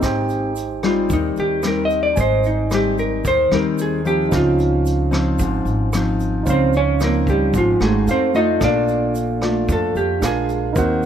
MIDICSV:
0, 0, Header, 1, 6, 480
1, 0, Start_track
1, 0, Tempo, 536673
1, 26, Time_signature, 4, 2, 24, 8
1, 9888, End_track
2, 0, Start_track
2, 0, Title_t, "Tine electric piano"
2, 0, Program_c, 0, 4
2, 0, Control_c, 0, 64, 127
2, 0, Note_on_c, 0, 63, 54
2, 15, Note_on_c, 0, 67, 52
2, 33, Note_on_c, 0, 72, 48
2, 38, Control_c, 0, 64, 0
2, 51, Note_on_c, 0, 79, 59
2, 188, Control_c, 0, 64, 127
2, 1895, Note_off_c, 0, 63, 0
2, 1903, Note_off_c, 0, 67, 0
2, 1909, Note_on_c, 0, 63, 49
2, 1913, Note_off_c, 0, 72, 0
2, 1921, Note_off_c, 0, 79, 0
2, 1930, Note_on_c, 0, 80, 46
2, 1949, Note_on_c, 0, 72, 42
2, 1965, Note_on_c, 0, 75, 55
2, 3810, Note_off_c, 0, 63, 0
2, 3821, Note_off_c, 0, 80, 0
2, 3830, Note_off_c, 0, 72, 0
2, 3836, Note_on_c, 0, 63, 50
2, 3838, Note_off_c, 0, 75, 0
2, 3856, Note_on_c, 0, 72, 45
2, 3871, Note_on_c, 0, 61, 43
2, 3874, Control_c, 0, 64, 0
2, 3890, Note_on_c, 0, 77, 48
2, 4034, Control_c, 0, 64, 127
2, 5733, Note_off_c, 0, 63, 0
2, 5743, Note_off_c, 0, 72, 0
2, 5751, Note_off_c, 0, 61, 0
2, 5754, Note_on_c, 0, 63, 47
2, 5760, Note_off_c, 0, 77, 0
2, 5775, Note_on_c, 0, 72, 42
2, 5793, Note_on_c, 0, 61, 45
2, 5808, Note_on_c, 0, 77, 51
2, 7179, Note_off_c, 0, 63, 0
2, 7189, Note_off_c, 0, 72, 0
2, 7199, Note_off_c, 0, 61, 0
2, 7206, Note_off_c, 0, 77, 0
2, 7227, Note_on_c, 0, 69, 37
2, 7235, Control_c, 0, 64, 0
2, 7236, Note_on_c, 0, 77, 48
2, 7387, Control_c, 0, 64, 127
2, 7681, Note_on_c, 0, 62, 46
2, 7684, Note_off_c, 0, 69, 0
2, 7695, Note_on_c, 0, 69, 44
2, 7709, Note_off_c, 0, 77, 0
2, 7713, Control_c, 0, 64, 0
2, 7715, Note_on_c, 0, 58, 41
2, 7734, Note_on_c, 0, 77, 52
2, 7871, Control_c, 0, 64, 127
2, 9102, Note_off_c, 0, 62, 0
2, 9109, Note_off_c, 0, 69, 0
2, 9120, Note_off_c, 0, 58, 0
2, 9129, Note_off_c, 0, 77, 0
2, 9132, Note_on_c, 0, 62, 46
2, 9143, Note_on_c, 0, 68, 40
2, 9154, Control_c, 0, 64, 0
2, 9154, Note_on_c, 0, 70, 40
2, 9158, Note_on_c, 0, 77, 49
2, 9302, Control_c, 0, 64, 127
2, 9595, Note_on_c, 0, 63, 59
2, 9599, Note_off_c, 0, 70, 0
2, 9610, Note_on_c, 0, 70, 51
2, 9617, Note_off_c, 0, 62, 0
2, 9622, Note_off_c, 0, 68, 0
2, 9628, Note_on_c, 0, 72, 52
2, 9630, Note_off_c, 0, 77, 0
2, 9632, Control_c, 0, 64, 0
2, 9645, Note_on_c, 0, 78, 58
2, 9761, Control_c, 0, 64, 127
2, 9888, Note_off_c, 0, 63, 0
2, 9888, Note_off_c, 0, 70, 0
2, 9888, Note_off_c, 0, 72, 0
2, 9888, Note_off_c, 0, 78, 0
2, 9888, End_track
3, 0, Start_track
3, 0, Title_t, "Hollow-body jazz guitar"
3, 0, Program_c, 1, 26
3, 763, Note_on_c, 1, 65, 56
3, 987, Note_off_c, 1, 65, 0
3, 1014, Note_on_c, 1, 63, 67
3, 1232, Note_off_c, 1, 63, 0
3, 1249, Note_on_c, 1, 67, 74
3, 1470, Note_off_c, 1, 67, 0
3, 1496, Note_on_c, 1, 70, 58
3, 1636, Note_off_c, 1, 70, 0
3, 1656, Note_on_c, 1, 75, 78
3, 1796, Note_off_c, 1, 75, 0
3, 1814, Note_on_c, 1, 74, 78
3, 1955, Note_off_c, 1, 74, 0
3, 1973, Note_on_c, 1, 72, 65
3, 2192, Note_off_c, 1, 72, 0
3, 2205, Note_on_c, 1, 63, 39
3, 2428, Note_off_c, 1, 63, 0
3, 2456, Note_on_c, 1, 67, 69
3, 2673, Note_off_c, 1, 67, 0
3, 2678, Note_on_c, 1, 70, 66
3, 2904, Note_off_c, 1, 70, 0
3, 2929, Note_on_c, 1, 72, 87
3, 3150, Note_off_c, 1, 72, 0
3, 3167, Note_on_c, 1, 70, 69
3, 3389, Note_off_c, 1, 70, 0
3, 3412, Note_on_c, 1, 68, 57
3, 3631, Note_off_c, 1, 68, 0
3, 3640, Note_on_c, 1, 67, 82
3, 3865, Note_off_c, 1, 67, 0
3, 3896, Note_on_c, 1, 65, 66
3, 4564, Note_off_c, 1, 65, 0
3, 5813, Note_on_c, 1, 60, 58
3, 5817, Note_on_c, 1, 72, 63
3, 6031, Note_off_c, 1, 72, 0
3, 6032, Note_off_c, 1, 60, 0
3, 6053, Note_on_c, 1, 61, 80
3, 6056, Note_on_c, 1, 73, 83
3, 6271, Note_off_c, 1, 73, 0
3, 6272, Note_off_c, 1, 61, 0
3, 6298, Note_on_c, 1, 70, 69
3, 6299, Note_on_c, 1, 58, 65
3, 6513, Note_off_c, 1, 70, 0
3, 6514, Note_off_c, 1, 58, 0
3, 6527, Note_on_c, 1, 67, 70
3, 6531, Note_on_c, 1, 55, 50
3, 6748, Note_off_c, 1, 67, 0
3, 6750, Note_off_c, 1, 55, 0
3, 6772, Note_on_c, 1, 53, 49
3, 6777, Note_on_c, 1, 65, 66
3, 6991, Note_off_c, 1, 53, 0
3, 6991, Note_off_c, 1, 65, 0
3, 7003, Note_on_c, 1, 56, 55
3, 7008, Note_on_c, 1, 68, 67
3, 7226, Note_off_c, 1, 56, 0
3, 7226, Note_off_c, 1, 68, 0
3, 7252, Note_on_c, 1, 72, 66
3, 7256, Note_on_c, 1, 60, 56
3, 7470, Note_off_c, 1, 72, 0
3, 7473, Note_off_c, 1, 60, 0
3, 7474, Note_on_c, 1, 75, 88
3, 7483, Note_on_c, 1, 63, 70
3, 7701, Note_off_c, 1, 75, 0
3, 7706, Note_off_c, 1, 63, 0
3, 7729, Note_on_c, 1, 74, 79
3, 7735, Note_on_c, 1, 62, 68
3, 8163, Note_off_c, 1, 74, 0
3, 8166, Note_off_c, 1, 62, 0
3, 8697, Note_on_c, 1, 69, 67
3, 8913, Note_off_c, 1, 69, 0
3, 8917, Note_on_c, 1, 67, 67
3, 9142, Note_off_c, 1, 67, 0
3, 9170, Note_on_c, 1, 68, 67
3, 9389, Note_off_c, 1, 68, 0
3, 9888, End_track
4, 0, Start_track
4, 0, Title_t, "Nylon-string guitar"
4, 0, Program_c, 2, 24
4, 0, Note_on_c, 2, 60, 61
4, 0, Note_on_c, 2, 63, 59
4, 0, Note_on_c, 2, 67, 62
4, 29, Note_on_c, 2, 44, 45
4, 467, Note_off_c, 2, 60, 0
4, 468, Note_off_c, 2, 63, 0
4, 471, Note_off_c, 2, 67, 0
4, 744, Note_on_c, 2, 55, 61
4, 750, Note_on_c, 2, 60, 53
4, 754, Note_on_c, 2, 63, 61
4, 963, Note_off_c, 2, 44, 0
4, 988, Note_on_c, 2, 51, 50
4, 1426, Note_off_c, 2, 55, 0
4, 1429, Note_off_c, 2, 60, 0
4, 1430, Note_off_c, 2, 63, 0
4, 1469, Note_on_c, 2, 55, 46
4, 1474, Note_on_c, 2, 60, 46
4, 1479, Note_on_c, 2, 63, 56
4, 1922, Note_off_c, 2, 51, 0
4, 1947, Note_on_c, 2, 44, 44
4, 2389, Note_off_c, 2, 55, 0
4, 2390, Note_off_c, 2, 60, 0
4, 2393, Note_off_c, 2, 63, 0
4, 2423, Note_on_c, 2, 55, 54
4, 2425, Note_on_c, 2, 60, 54
4, 2432, Note_on_c, 2, 63, 62
4, 2881, Note_off_c, 2, 44, 0
4, 2901, Note_off_c, 2, 55, 0
4, 2901, Note_off_c, 2, 60, 0
4, 2905, Note_off_c, 2, 63, 0
4, 2906, Note_on_c, 2, 51, 51
4, 3142, Note_on_c, 2, 55, 61
4, 3146, Note_on_c, 2, 60, 60
4, 3152, Note_on_c, 2, 63, 64
4, 3584, Note_off_c, 2, 55, 0
4, 3586, Note_off_c, 2, 60, 0
4, 3589, Note_off_c, 2, 63, 0
4, 3620, Note_on_c, 2, 53, 53
4, 3626, Note_on_c, 2, 60, 57
4, 3632, Note_on_c, 2, 63, 61
4, 3841, Note_off_c, 2, 51, 0
4, 3857, Note_on_c, 2, 49, 46
4, 4545, Note_off_c, 2, 53, 0
4, 4545, Note_off_c, 2, 60, 0
4, 4546, Note_off_c, 2, 63, 0
4, 4571, Note_on_c, 2, 53, 60
4, 4576, Note_on_c, 2, 60, 58
4, 4581, Note_on_c, 2, 63, 60
4, 4796, Note_off_c, 2, 49, 0
4, 4827, Note_on_c, 2, 44, 51
4, 5259, Note_off_c, 2, 53, 0
4, 5260, Note_off_c, 2, 60, 0
4, 5264, Note_off_c, 2, 63, 0
4, 5314, Note_on_c, 2, 53, 51
4, 5316, Note_on_c, 2, 60, 46
4, 5320, Note_on_c, 2, 63, 58
4, 5761, Note_off_c, 2, 44, 0
4, 5777, Note_on_c, 2, 49, 50
4, 6230, Note_off_c, 2, 53, 0
4, 6230, Note_off_c, 2, 60, 0
4, 6233, Note_off_c, 2, 63, 0
4, 6264, Note_on_c, 2, 53, 52
4, 6270, Note_on_c, 2, 60, 55
4, 6277, Note_on_c, 2, 63, 62
4, 6716, Note_off_c, 2, 49, 0
4, 6741, Note_on_c, 2, 44, 53
4, 6945, Note_off_c, 2, 53, 0
4, 6948, Note_off_c, 2, 60, 0
4, 6950, Note_off_c, 2, 63, 0
4, 6976, Note_on_c, 2, 57, 66
4, 6980, Note_on_c, 2, 63, 56
4, 6986, Note_on_c, 2, 66, 60
4, 7198, Note_off_c, 2, 44, 0
4, 7421, Note_off_c, 2, 57, 0
4, 7423, Note_off_c, 2, 63, 0
4, 7425, Note_off_c, 2, 66, 0
4, 7460, Note_on_c, 2, 57, 56
4, 7465, Note_on_c, 2, 62, 53
4, 7471, Note_on_c, 2, 65, 64
4, 7703, Note_on_c, 2, 46, 46
4, 8383, Note_off_c, 2, 57, 0
4, 8386, Note_off_c, 2, 62, 0
4, 8387, Note_off_c, 2, 65, 0
4, 8418, Note_on_c, 2, 57, 64
4, 8426, Note_on_c, 2, 62, 65
4, 8430, Note_on_c, 2, 65, 58
4, 8639, Note_off_c, 2, 46, 0
4, 8664, Note_on_c, 2, 41, 53
4, 9102, Note_off_c, 2, 57, 0
4, 9106, Note_off_c, 2, 62, 0
4, 9106, Note_off_c, 2, 65, 0
4, 9119, Note_off_c, 2, 41, 0
4, 9142, Note_on_c, 2, 56, 52
4, 9145, Note_on_c, 2, 62, 52
4, 9150, Note_on_c, 2, 65, 48
4, 9603, Note_off_c, 2, 56, 0
4, 9605, Note_off_c, 2, 62, 0
4, 9605, Note_off_c, 2, 65, 0
4, 9621, Note_on_c, 2, 51, 50
4, 9627, Note_on_c, 2, 58, 53
4, 9630, Note_on_c, 2, 60, 47
4, 9634, Note_on_c, 2, 66, 55
4, 9888, Note_off_c, 2, 51, 0
4, 9888, Note_off_c, 2, 58, 0
4, 9888, Note_off_c, 2, 60, 0
4, 9888, Note_off_c, 2, 66, 0
4, 9888, End_track
5, 0, Start_track
5, 0, Title_t, "Upright bass"
5, 0, Program_c, 3, 32
5, 23, Note_on_c, 3, 32, 84
5, 948, Note_off_c, 3, 32, 0
5, 984, Note_on_c, 3, 39, 80
5, 1208, Note_off_c, 3, 39, 0
5, 1227, Note_on_c, 3, 39, 72
5, 1910, Note_off_c, 3, 39, 0
5, 1943, Note_on_c, 3, 32, 92
5, 2868, Note_off_c, 3, 32, 0
5, 2905, Note_on_c, 3, 39, 84
5, 3128, Note_off_c, 3, 39, 0
5, 3147, Note_on_c, 3, 39, 83
5, 3829, Note_off_c, 3, 39, 0
5, 3864, Note_on_c, 3, 37, 103
5, 4788, Note_off_c, 3, 37, 0
5, 4823, Note_on_c, 3, 32, 80
5, 5046, Note_off_c, 3, 32, 0
5, 5055, Note_on_c, 3, 32, 76
5, 5743, Note_off_c, 3, 32, 0
5, 5785, Note_on_c, 3, 37, 90
5, 6708, Note_off_c, 3, 37, 0
5, 6741, Note_on_c, 3, 32, 83
5, 6965, Note_off_c, 3, 32, 0
5, 6983, Note_on_c, 3, 32, 74
5, 7206, Note_off_c, 3, 32, 0
5, 7219, Note_on_c, 3, 41, 82
5, 7667, Note_off_c, 3, 41, 0
5, 7702, Note_on_c, 3, 34, 97
5, 8626, Note_off_c, 3, 34, 0
5, 8661, Note_on_c, 3, 41, 89
5, 8885, Note_off_c, 3, 41, 0
5, 8902, Note_on_c, 3, 41, 75
5, 9125, Note_off_c, 3, 41, 0
5, 9140, Note_on_c, 3, 34, 92
5, 9587, Note_off_c, 3, 34, 0
5, 9623, Note_on_c, 3, 39, 89
5, 9888, Note_off_c, 3, 39, 0
5, 9888, End_track
6, 0, Start_track
6, 0, Title_t, "Drums"
6, 20, Note_on_c, 9, 82, 62
6, 22, Note_on_c, 9, 37, 51
6, 22, Note_on_c, 9, 42, 37
6, 24, Note_on_c, 9, 36, 48
6, 109, Note_off_c, 9, 82, 0
6, 112, Note_off_c, 9, 37, 0
6, 112, Note_off_c, 9, 42, 0
6, 114, Note_off_c, 9, 36, 0
6, 258, Note_on_c, 9, 82, 24
6, 267, Note_on_c, 9, 42, 26
6, 347, Note_off_c, 9, 82, 0
6, 356, Note_off_c, 9, 42, 0
6, 500, Note_on_c, 9, 82, 48
6, 507, Note_on_c, 9, 42, 37
6, 589, Note_off_c, 9, 82, 0
6, 597, Note_off_c, 9, 42, 0
6, 743, Note_on_c, 9, 37, 58
6, 743, Note_on_c, 9, 42, 25
6, 745, Note_on_c, 9, 82, 24
6, 832, Note_off_c, 9, 37, 0
6, 832, Note_off_c, 9, 42, 0
6, 835, Note_off_c, 9, 82, 0
6, 980, Note_on_c, 9, 82, 66
6, 983, Note_on_c, 9, 36, 51
6, 984, Note_on_c, 9, 42, 35
6, 1069, Note_off_c, 9, 82, 0
6, 1072, Note_off_c, 9, 36, 0
6, 1073, Note_off_c, 9, 42, 0
6, 1221, Note_on_c, 9, 82, 26
6, 1225, Note_on_c, 9, 42, 22
6, 1310, Note_off_c, 9, 82, 0
6, 1314, Note_off_c, 9, 42, 0
6, 1455, Note_on_c, 9, 82, 56
6, 1457, Note_on_c, 9, 37, 56
6, 1457, Note_on_c, 9, 42, 42
6, 1545, Note_off_c, 9, 82, 0
6, 1547, Note_off_c, 9, 37, 0
6, 1547, Note_off_c, 9, 42, 0
6, 1697, Note_on_c, 9, 82, 25
6, 1703, Note_on_c, 9, 42, 22
6, 1786, Note_off_c, 9, 82, 0
6, 1792, Note_off_c, 9, 42, 0
6, 1937, Note_on_c, 9, 82, 59
6, 1943, Note_on_c, 9, 36, 55
6, 1943, Note_on_c, 9, 42, 34
6, 2027, Note_off_c, 9, 82, 0
6, 2032, Note_off_c, 9, 42, 0
6, 2033, Note_off_c, 9, 36, 0
6, 2176, Note_on_c, 9, 82, 23
6, 2187, Note_on_c, 9, 42, 26
6, 2266, Note_off_c, 9, 82, 0
6, 2276, Note_off_c, 9, 42, 0
6, 2420, Note_on_c, 9, 82, 53
6, 2424, Note_on_c, 9, 37, 55
6, 2424, Note_on_c, 9, 42, 40
6, 2510, Note_off_c, 9, 82, 0
6, 2514, Note_off_c, 9, 37, 0
6, 2514, Note_off_c, 9, 42, 0
6, 2664, Note_on_c, 9, 82, 24
6, 2665, Note_on_c, 9, 42, 25
6, 2754, Note_off_c, 9, 42, 0
6, 2754, Note_off_c, 9, 82, 0
6, 2904, Note_on_c, 9, 42, 41
6, 2905, Note_on_c, 9, 36, 48
6, 2905, Note_on_c, 9, 82, 65
6, 2994, Note_off_c, 9, 36, 0
6, 2994, Note_off_c, 9, 42, 0
6, 2994, Note_off_c, 9, 82, 0
6, 3143, Note_on_c, 9, 37, 52
6, 3143, Note_on_c, 9, 42, 27
6, 3144, Note_on_c, 9, 82, 23
6, 3233, Note_off_c, 9, 37, 0
6, 3233, Note_off_c, 9, 42, 0
6, 3233, Note_off_c, 9, 82, 0
6, 3382, Note_on_c, 9, 82, 65
6, 3386, Note_on_c, 9, 42, 44
6, 3472, Note_off_c, 9, 82, 0
6, 3475, Note_off_c, 9, 42, 0
6, 3622, Note_on_c, 9, 42, 24
6, 3626, Note_on_c, 9, 82, 26
6, 3711, Note_off_c, 9, 42, 0
6, 3716, Note_off_c, 9, 82, 0
6, 3863, Note_on_c, 9, 82, 62
6, 3864, Note_on_c, 9, 36, 49
6, 3864, Note_on_c, 9, 37, 52
6, 3864, Note_on_c, 9, 42, 35
6, 3952, Note_off_c, 9, 82, 0
6, 3953, Note_off_c, 9, 36, 0
6, 3954, Note_off_c, 9, 37, 0
6, 3954, Note_off_c, 9, 42, 0
6, 4105, Note_on_c, 9, 82, 28
6, 4110, Note_on_c, 9, 42, 30
6, 4194, Note_off_c, 9, 82, 0
6, 4200, Note_off_c, 9, 42, 0
6, 4342, Note_on_c, 9, 82, 55
6, 4351, Note_on_c, 9, 42, 43
6, 4432, Note_off_c, 9, 82, 0
6, 4440, Note_off_c, 9, 42, 0
6, 4579, Note_on_c, 9, 82, 22
6, 4587, Note_on_c, 9, 37, 57
6, 4587, Note_on_c, 9, 42, 26
6, 4668, Note_off_c, 9, 82, 0
6, 4677, Note_off_c, 9, 37, 0
6, 4677, Note_off_c, 9, 42, 0
6, 4820, Note_on_c, 9, 82, 62
6, 4825, Note_on_c, 9, 36, 53
6, 4826, Note_on_c, 9, 42, 38
6, 4909, Note_off_c, 9, 82, 0
6, 4914, Note_off_c, 9, 36, 0
6, 4916, Note_off_c, 9, 42, 0
6, 5062, Note_on_c, 9, 82, 26
6, 5069, Note_on_c, 9, 42, 23
6, 5152, Note_off_c, 9, 82, 0
6, 5158, Note_off_c, 9, 42, 0
6, 5303, Note_on_c, 9, 37, 58
6, 5303, Note_on_c, 9, 42, 37
6, 5303, Note_on_c, 9, 82, 60
6, 5393, Note_off_c, 9, 37, 0
6, 5393, Note_off_c, 9, 42, 0
6, 5393, Note_off_c, 9, 82, 0
6, 5544, Note_on_c, 9, 82, 27
6, 5548, Note_on_c, 9, 42, 24
6, 5633, Note_off_c, 9, 82, 0
6, 5637, Note_off_c, 9, 42, 0
6, 5781, Note_on_c, 9, 82, 63
6, 5784, Note_on_c, 9, 36, 47
6, 5785, Note_on_c, 9, 42, 37
6, 5871, Note_off_c, 9, 82, 0
6, 5873, Note_off_c, 9, 36, 0
6, 5875, Note_off_c, 9, 42, 0
6, 6019, Note_on_c, 9, 82, 27
6, 6027, Note_on_c, 9, 42, 27
6, 6108, Note_off_c, 9, 82, 0
6, 6117, Note_off_c, 9, 42, 0
6, 6260, Note_on_c, 9, 82, 56
6, 6266, Note_on_c, 9, 37, 54
6, 6266, Note_on_c, 9, 42, 34
6, 6350, Note_off_c, 9, 82, 0
6, 6355, Note_off_c, 9, 37, 0
6, 6355, Note_off_c, 9, 42, 0
6, 6499, Note_on_c, 9, 42, 23
6, 6501, Note_on_c, 9, 36, 49
6, 6506, Note_on_c, 9, 82, 25
6, 6589, Note_off_c, 9, 42, 0
6, 6590, Note_off_c, 9, 36, 0
6, 6595, Note_off_c, 9, 82, 0
6, 6741, Note_on_c, 9, 36, 54
6, 6741, Note_on_c, 9, 82, 65
6, 6742, Note_on_c, 9, 42, 36
6, 6830, Note_off_c, 9, 82, 0
6, 6831, Note_off_c, 9, 36, 0
6, 6832, Note_off_c, 9, 42, 0
6, 6980, Note_on_c, 9, 82, 23
6, 6982, Note_on_c, 9, 37, 48
6, 6982, Note_on_c, 9, 42, 22
6, 7070, Note_off_c, 9, 82, 0
6, 7071, Note_off_c, 9, 37, 0
6, 7071, Note_off_c, 9, 42, 0
6, 7219, Note_on_c, 9, 42, 44
6, 7222, Note_on_c, 9, 82, 62
6, 7309, Note_off_c, 9, 42, 0
6, 7312, Note_off_c, 9, 82, 0
6, 7462, Note_on_c, 9, 42, 26
6, 7463, Note_on_c, 9, 82, 25
6, 7552, Note_off_c, 9, 42, 0
6, 7552, Note_off_c, 9, 82, 0
6, 7698, Note_on_c, 9, 37, 53
6, 7698, Note_on_c, 9, 42, 39
6, 7701, Note_on_c, 9, 36, 50
6, 7702, Note_on_c, 9, 82, 64
6, 7788, Note_off_c, 9, 37, 0
6, 7788, Note_off_c, 9, 42, 0
6, 7791, Note_off_c, 9, 36, 0
6, 7791, Note_off_c, 9, 82, 0
6, 7942, Note_on_c, 9, 42, 27
6, 7942, Note_on_c, 9, 82, 26
6, 8031, Note_off_c, 9, 42, 0
6, 8032, Note_off_c, 9, 82, 0
6, 8183, Note_on_c, 9, 42, 36
6, 8183, Note_on_c, 9, 82, 57
6, 8272, Note_off_c, 9, 42, 0
6, 8273, Note_off_c, 9, 82, 0
6, 8422, Note_on_c, 9, 37, 52
6, 8422, Note_on_c, 9, 42, 26
6, 8422, Note_on_c, 9, 82, 23
6, 8511, Note_off_c, 9, 37, 0
6, 8511, Note_off_c, 9, 42, 0
6, 8511, Note_off_c, 9, 82, 0
6, 8663, Note_on_c, 9, 36, 54
6, 8663, Note_on_c, 9, 42, 39
6, 8665, Note_on_c, 9, 82, 59
6, 8752, Note_off_c, 9, 42, 0
6, 8753, Note_off_c, 9, 36, 0
6, 8754, Note_off_c, 9, 82, 0
6, 8903, Note_on_c, 9, 82, 24
6, 8904, Note_on_c, 9, 42, 26
6, 8993, Note_off_c, 9, 42, 0
6, 8993, Note_off_c, 9, 82, 0
6, 9143, Note_on_c, 9, 37, 62
6, 9143, Note_on_c, 9, 42, 45
6, 9144, Note_on_c, 9, 82, 64
6, 9232, Note_off_c, 9, 37, 0
6, 9232, Note_off_c, 9, 42, 0
6, 9233, Note_off_c, 9, 82, 0
6, 9380, Note_on_c, 9, 42, 25
6, 9385, Note_on_c, 9, 82, 27
6, 9470, Note_off_c, 9, 42, 0
6, 9474, Note_off_c, 9, 82, 0
6, 9619, Note_on_c, 9, 42, 38
6, 9622, Note_on_c, 9, 36, 53
6, 9622, Note_on_c, 9, 82, 63
6, 9709, Note_off_c, 9, 42, 0
6, 9711, Note_off_c, 9, 36, 0
6, 9712, Note_off_c, 9, 82, 0
6, 9888, End_track
0, 0, End_of_file